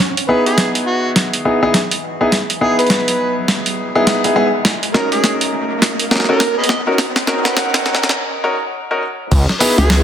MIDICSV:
0, 0, Header, 1, 7, 480
1, 0, Start_track
1, 0, Time_signature, 4, 2, 24, 8
1, 0, Tempo, 582524
1, 8268, End_track
2, 0, Start_track
2, 0, Title_t, "Harmonica"
2, 0, Program_c, 0, 22
2, 234, Note_on_c, 0, 71, 88
2, 351, Note_off_c, 0, 71, 0
2, 382, Note_on_c, 0, 68, 90
2, 558, Note_off_c, 0, 68, 0
2, 714, Note_on_c, 0, 66, 87
2, 913, Note_off_c, 0, 66, 0
2, 2154, Note_on_c, 0, 68, 91
2, 2271, Note_off_c, 0, 68, 0
2, 2299, Note_on_c, 0, 71, 91
2, 2780, Note_off_c, 0, 71, 0
2, 4074, Note_on_c, 0, 70, 92
2, 4191, Note_off_c, 0, 70, 0
2, 4219, Note_on_c, 0, 68, 94
2, 4396, Note_off_c, 0, 68, 0
2, 5179, Note_on_c, 0, 70, 95
2, 5391, Note_off_c, 0, 70, 0
2, 5421, Note_on_c, 0, 68, 65
2, 5421, Note_on_c, 0, 71, 65
2, 5421, Note_on_c, 0, 75, 93
2, 5481, Note_off_c, 0, 71, 0
2, 5487, Note_off_c, 0, 68, 0
2, 5597, Note_off_c, 0, 75, 0
2, 6140, Note_on_c, 0, 71, 69
2, 6140, Note_on_c, 0, 75, 69
2, 6140, Note_on_c, 0, 78, 99
2, 6212, Note_off_c, 0, 71, 0
2, 6213, Note_off_c, 0, 75, 0
2, 6621, Note_off_c, 0, 78, 0
2, 7915, Note_on_c, 0, 71, 94
2, 8032, Note_off_c, 0, 71, 0
2, 8058, Note_on_c, 0, 68, 95
2, 8236, Note_off_c, 0, 68, 0
2, 8268, End_track
3, 0, Start_track
3, 0, Title_t, "Grand piano"
3, 0, Program_c, 1, 0
3, 235, Note_on_c, 1, 64, 70
3, 236, Note_on_c, 1, 59, 79
3, 236, Note_on_c, 1, 63, 73
3, 236, Note_on_c, 1, 68, 87
3, 1173, Note_off_c, 1, 59, 0
3, 1173, Note_off_c, 1, 63, 0
3, 1173, Note_off_c, 1, 64, 0
3, 1173, Note_off_c, 1, 68, 0
3, 1196, Note_on_c, 1, 64, 69
3, 1197, Note_on_c, 1, 59, 77
3, 1197, Note_on_c, 1, 63, 67
3, 1197, Note_on_c, 1, 68, 81
3, 1320, Note_off_c, 1, 59, 0
3, 1320, Note_off_c, 1, 63, 0
3, 1320, Note_off_c, 1, 64, 0
3, 1320, Note_off_c, 1, 68, 0
3, 1339, Note_on_c, 1, 59, 95
3, 1340, Note_on_c, 1, 63, 87
3, 1340, Note_on_c, 1, 64, 87
3, 1340, Note_on_c, 1, 68, 104
3, 1430, Note_off_c, 1, 59, 0
3, 1430, Note_off_c, 1, 63, 0
3, 1430, Note_off_c, 1, 64, 0
3, 1431, Note_off_c, 1, 68, 0
3, 1819, Note_on_c, 1, 59, 80
3, 1819, Note_on_c, 1, 68, 87
3, 1820, Note_on_c, 1, 63, 74
3, 1821, Note_on_c, 1, 64, 75
3, 1910, Note_off_c, 1, 59, 0
3, 1910, Note_off_c, 1, 63, 0
3, 1910, Note_off_c, 1, 68, 0
3, 1911, Note_off_c, 1, 64, 0
3, 2152, Note_on_c, 1, 59, 81
3, 2152, Note_on_c, 1, 63, 74
3, 2152, Note_on_c, 1, 64, 75
3, 2152, Note_on_c, 1, 68, 89
3, 3224, Note_off_c, 1, 59, 0
3, 3225, Note_off_c, 1, 63, 0
3, 3225, Note_off_c, 1, 64, 0
3, 3225, Note_off_c, 1, 68, 0
3, 3258, Note_on_c, 1, 68, 100
3, 3259, Note_on_c, 1, 59, 93
3, 3259, Note_on_c, 1, 64, 84
3, 3260, Note_on_c, 1, 63, 86
3, 3465, Note_off_c, 1, 59, 0
3, 3465, Note_off_c, 1, 64, 0
3, 3465, Note_off_c, 1, 68, 0
3, 3466, Note_off_c, 1, 63, 0
3, 3498, Note_on_c, 1, 68, 81
3, 3499, Note_on_c, 1, 59, 73
3, 3499, Note_on_c, 1, 63, 67
3, 3499, Note_on_c, 1, 64, 66
3, 3578, Note_off_c, 1, 63, 0
3, 3579, Note_off_c, 1, 59, 0
3, 3579, Note_off_c, 1, 64, 0
3, 3579, Note_off_c, 1, 68, 0
3, 3591, Note_on_c, 1, 63, 87
3, 3591, Note_on_c, 1, 64, 84
3, 3591, Note_on_c, 1, 68, 104
3, 3592, Note_on_c, 1, 59, 90
3, 3679, Note_off_c, 1, 63, 0
3, 3680, Note_off_c, 1, 59, 0
3, 3680, Note_off_c, 1, 64, 0
3, 3680, Note_off_c, 1, 68, 0
3, 4071, Note_on_c, 1, 61, 83
3, 4071, Note_on_c, 1, 70, 90
3, 4072, Note_on_c, 1, 63, 77
3, 4072, Note_on_c, 1, 66, 73
3, 5011, Note_off_c, 1, 61, 0
3, 5011, Note_off_c, 1, 63, 0
3, 5011, Note_off_c, 1, 66, 0
3, 5011, Note_off_c, 1, 70, 0
3, 5035, Note_on_c, 1, 61, 77
3, 5036, Note_on_c, 1, 63, 70
3, 5036, Note_on_c, 1, 70, 84
3, 5037, Note_on_c, 1, 66, 73
3, 5159, Note_off_c, 1, 61, 0
3, 5160, Note_off_c, 1, 63, 0
3, 5160, Note_off_c, 1, 66, 0
3, 5160, Note_off_c, 1, 70, 0
3, 5180, Note_on_c, 1, 63, 91
3, 5181, Note_on_c, 1, 61, 102
3, 5181, Note_on_c, 1, 66, 94
3, 5181, Note_on_c, 1, 70, 108
3, 5271, Note_off_c, 1, 61, 0
3, 5271, Note_off_c, 1, 63, 0
3, 5271, Note_off_c, 1, 66, 0
3, 5271, Note_off_c, 1, 70, 0
3, 5660, Note_on_c, 1, 66, 77
3, 5661, Note_on_c, 1, 61, 84
3, 5661, Note_on_c, 1, 63, 76
3, 5662, Note_on_c, 1, 70, 89
3, 5751, Note_off_c, 1, 61, 0
3, 5751, Note_off_c, 1, 63, 0
3, 5751, Note_off_c, 1, 66, 0
3, 5751, Note_off_c, 1, 70, 0
3, 5995, Note_on_c, 1, 61, 85
3, 5995, Note_on_c, 1, 63, 81
3, 5996, Note_on_c, 1, 66, 80
3, 5997, Note_on_c, 1, 70, 96
3, 6937, Note_off_c, 1, 61, 0
3, 6937, Note_off_c, 1, 63, 0
3, 6937, Note_off_c, 1, 66, 0
3, 6937, Note_off_c, 1, 70, 0
3, 6953, Note_on_c, 1, 61, 90
3, 6953, Note_on_c, 1, 63, 80
3, 6953, Note_on_c, 1, 66, 79
3, 6953, Note_on_c, 1, 70, 96
3, 7040, Note_off_c, 1, 63, 0
3, 7041, Note_off_c, 1, 61, 0
3, 7041, Note_off_c, 1, 66, 0
3, 7041, Note_off_c, 1, 70, 0
3, 7340, Note_on_c, 1, 61, 85
3, 7340, Note_on_c, 1, 63, 77
3, 7340, Note_on_c, 1, 70, 93
3, 7341, Note_on_c, 1, 66, 77
3, 7430, Note_off_c, 1, 63, 0
3, 7431, Note_off_c, 1, 61, 0
3, 7431, Note_off_c, 1, 66, 0
3, 7431, Note_off_c, 1, 70, 0
3, 7915, Note_on_c, 1, 59, 84
3, 7915, Note_on_c, 1, 63, 76
3, 7915, Note_on_c, 1, 64, 75
3, 7915, Note_on_c, 1, 68, 90
3, 8268, Note_off_c, 1, 59, 0
3, 8268, Note_off_c, 1, 63, 0
3, 8268, Note_off_c, 1, 64, 0
3, 8268, Note_off_c, 1, 68, 0
3, 8268, End_track
4, 0, Start_track
4, 0, Title_t, "Analog synth bass"
4, 0, Program_c, 2, 38
4, 7676, Note_on_c, 2, 37, 99
4, 7798, Note_off_c, 2, 37, 0
4, 8268, End_track
5, 0, Start_track
5, 0, Title_t, "Wobble bass"
5, 0, Program_c, 3, 39
5, 8059, Note_on_c, 3, 37, 93
5, 8268, Note_off_c, 3, 37, 0
5, 8268, End_track
6, 0, Start_track
6, 0, Title_t, "Riser"
6, 0, Program_c, 4, 103
6, 0, Note_on_c, 4, 60, 75
6, 6715, Note_off_c, 4, 60, 0
6, 8268, End_track
7, 0, Start_track
7, 0, Title_t, "Drums"
7, 0, Note_on_c, 9, 38, 47
7, 0, Note_on_c, 9, 42, 77
7, 79, Note_off_c, 9, 38, 0
7, 79, Note_off_c, 9, 42, 0
7, 143, Note_on_c, 9, 42, 52
7, 226, Note_off_c, 9, 42, 0
7, 382, Note_on_c, 9, 42, 36
7, 465, Note_off_c, 9, 42, 0
7, 476, Note_on_c, 9, 38, 47
7, 476, Note_on_c, 9, 42, 76
7, 558, Note_off_c, 9, 38, 0
7, 558, Note_off_c, 9, 42, 0
7, 620, Note_on_c, 9, 42, 51
7, 702, Note_off_c, 9, 42, 0
7, 955, Note_on_c, 9, 38, 49
7, 955, Note_on_c, 9, 42, 78
7, 1037, Note_off_c, 9, 38, 0
7, 1037, Note_off_c, 9, 42, 0
7, 1100, Note_on_c, 9, 42, 52
7, 1182, Note_off_c, 9, 42, 0
7, 1434, Note_on_c, 9, 38, 54
7, 1434, Note_on_c, 9, 42, 78
7, 1517, Note_off_c, 9, 38, 0
7, 1517, Note_off_c, 9, 42, 0
7, 1578, Note_on_c, 9, 42, 53
7, 1660, Note_off_c, 9, 42, 0
7, 1913, Note_on_c, 9, 38, 57
7, 1913, Note_on_c, 9, 42, 80
7, 1995, Note_off_c, 9, 38, 0
7, 1995, Note_off_c, 9, 42, 0
7, 2059, Note_on_c, 9, 42, 53
7, 2141, Note_off_c, 9, 42, 0
7, 2298, Note_on_c, 9, 42, 35
7, 2311, Note_off_c, 9, 42, 0
7, 2311, Note_on_c, 9, 42, 29
7, 2361, Note_off_c, 9, 42, 0
7, 2361, Note_on_c, 9, 42, 24
7, 2389, Note_off_c, 9, 42, 0
7, 2389, Note_on_c, 9, 38, 58
7, 2389, Note_on_c, 9, 42, 77
7, 2440, Note_off_c, 9, 42, 0
7, 2440, Note_on_c, 9, 42, 15
7, 2472, Note_off_c, 9, 38, 0
7, 2522, Note_off_c, 9, 42, 0
7, 2538, Note_on_c, 9, 42, 55
7, 2620, Note_off_c, 9, 42, 0
7, 2870, Note_on_c, 9, 38, 64
7, 2870, Note_on_c, 9, 42, 80
7, 2952, Note_off_c, 9, 38, 0
7, 2952, Note_off_c, 9, 42, 0
7, 3016, Note_on_c, 9, 42, 51
7, 3099, Note_off_c, 9, 42, 0
7, 3353, Note_on_c, 9, 38, 66
7, 3353, Note_on_c, 9, 42, 80
7, 3436, Note_off_c, 9, 38, 0
7, 3436, Note_off_c, 9, 42, 0
7, 3496, Note_on_c, 9, 42, 55
7, 3579, Note_off_c, 9, 42, 0
7, 3831, Note_on_c, 9, 38, 74
7, 3831, Note_on_c, 9, 42, 82
7, 3913, Note_off_c, 9, 38, 0
7, 3913, Note_off_c, 9, 42, 0
7, 3979, Note_on_c, 9, 42, 51
7, 4061, Note_off_c, 9, 42, 0
7, 4074, Note_on_c, 9, 38, 70
7, 4156, Note_off_c, 9, 38, 0
7, 4218, Note_on_c, 9, 42, 36
7, 4301, Note_off_c, 9, 42, 0
7, 4315, Note_on_c, 9, 38, 74
7, 4315, Note_on_c, 9, 42, 77
7, 4397, Note_off_c, 9, 38, 0
7, 4397, Note_off_c, 9, 42, 0
7, 4459, Note_on_c, 9, 42, 55
7, 4542, Note_off_c, 9, 42, 0
7, 4795, Note_on_c, 9, 38, 82
7, 4795, Note_on_c, 9, 42, 79
7, 4878, Note_off_c, 9, 38, 0
7, 4878, Note_off_c, 9, 42, 0
7, 4940, Note_on_c, 9, 42, 51
7, 5022, Note_off_c, 9, 42, 0
7, 5036, Note_on_c, 9, 38, 79
7, 5072, Note_off_c, 9, 38, 0
7, 5072, Note_on_c, 9, 38, 65
7, 5108, Note_off_c, 9, 38, 0
7, 5108, Note_on_c, 9, 38, 52
7, 5145, Note_off_c, 9, 38, 0
7, 5145, Note_on_c, 9, 38, 44
7, 5227, Note_off_c, 9, 38, 0
7, 5274, Note_on_c, 9, 38, 87
7, 5274, Note_on_c, 9, 42, 82
7, 5357, Note_off_c, 9, 38, 0
7, 5357, Note_off_c, 9, 42, 0
7, 5468, Note_on_c, 9, 42, 55
7, 5514, Note_on_c, 9, 38, 91
7, 5551, Note_off_c, 9, 42, 0
7, 5596, Note_off_c, 9, 38, 0
7, 5754, Note_on_c, 9, 38, 92
7, 5754, Note_on_c, 9, 42, 79
7, 5837, Note_off_c, 9, 38, 0
7, 5837, Note_off_c, 9, 42, 0
7, 5900, Note_on_c, 9, 38, 80
7, 5900, Note_on_c, 9, 42, 51
7, 5982, Note_off_c, 9, 38, 0
7, 5982, Note_off_c, 9, 42, 0
7, 5993, Note_on_c, 9, 38, 91
7, 6076, Note_off_c, 9, 38, 0
7, 6140, Note_on_c, 9, 38, 84
7, 6140, Note_on_c, 9, 42, 36
7, 6222, Note_off_c, 9, 38, 0
7, 6222, Note_off_c, 9, 42, 0
7, 6235, Note_on_c, 9, 38, 93
7, 6235, Note_on_c, 9, 42, 75
7, 6317, Note_off_c, 9, 38, 0
7, 6317, Note_off_c, 9, 42, 0
7, 6379, Note_on_c, 9, 38, 87
7, 6379, Note_on_c, 9, 42, 54
7, 6461, Note_off_c, 9, 38, 0
7, 6461, Note_off_c, 9, 42, 0
7, 6474, Note_on_c, 9, 38, 46
7, 6548, Note_off_c, 9, 38, 0
7, 6548, Note_on_c, 9, 38, 60
7, 6621, Note_off_c, 9, 38, 0
7, 6621, Note_on_c, 9, 38, 68
7, 6669, Note_off_c, 9, 38, 0
7, 6669, Note_on_c, 9, 38, 83
7, 6751, Note_off_c, 9, 38, 0
7, 7674, Note_on_c, 9, 54, 52
7, 7677, Note_on_c, 9, 36, 119
7, 7677, Note_on_c, 9, 42, 84
7, 7677, Note_on_c, 9, 49, 103
7, 7757, Note_off_c, 9, 54, 0
7, 7759, Note_off_c, 9, 42, 0
7, 7759, Note_off_c, 9, 49, 0
7, 7760, Note_off_c, 9, 36, 0
7, 7823, Note_on_c, 9, 40, 41
7, 7824, Note_on_c, 9, 54, 25
7, 7905, Note_off_c, 9, 40, 0
7, 7907, Note_off_c, 9, 54, 0
7, 7914, Note_on_c, 9, 46, 60
7, 7918, Note_on_c, 9, 54, 89
7, 7996, Note_off_c, 9, 46, 0
7, 8000, Note_off_c, 9, 54, 0
7, 8059, Note_on_c, 9, 42, 38
7, 8065, Note_on_c, 9, 54, 42
7, 8142, Note_off_c, 9, 42, 0
7, 8147, Note_off_c, 9, 54, 0
7, 8156, Note_on_c, 9, 54, 57
7, 8157, Note_on_c, 9, 38, 115
7, 8157, Note_on_c, 9, 42, 83
7, 8238, Note_off_c, 9, 54, 0
7, 8239, Note_off_c, 9, 38, 0
7, 8239, Note_off_c, 9, 42, 0
7, 8268, End_track
0, 0, End_of_file